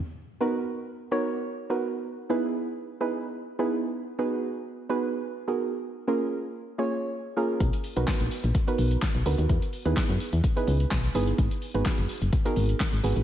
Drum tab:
HH |----------------|----------------|----------------|----------------|
SH |----------------|----------------|----------------|----------------|
CP |----------------|----------------|----------------|----------------|
SD |----------------|----------------|----------------|----------------|
BD |----------------|----------------|----------------|----------------|

HH |xxoxxxoxxxoxxxox|xxoxxxoxxxoxxxox|xxoxxxoxxxoxxxox|
SH |xxxxxxxxxxxxxxxx|xxxxxxxxxxxxxxxx|xxxxxxxxxxxxxxxx|
CP |----x-------x---|----x-------x---|----x-------x---|
SD |----o-------o---|----o-------o---|----o-------o---|
BD |o---o---o---o---|o---o---o---o---|o---o---o---o---|